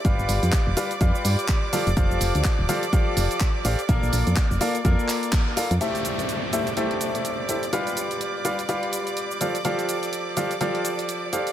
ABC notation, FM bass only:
X:1
M:4/4
L:1/16
Q:"Swing 16ths" 1/4=125
K:Am
V:1 name="FM bass" clef=bass
G,,, G,,, G,,, F,, z F,,, z2 F,, z G,, z4 F,,, | F,,, F,,, F,,, D,, z D,,, z4 F,,, z3 A,,, z | _B,,, B,,, B,,, F,, z F,,, z2 F,, z6 F,, | z16 |
z16 | z16 |]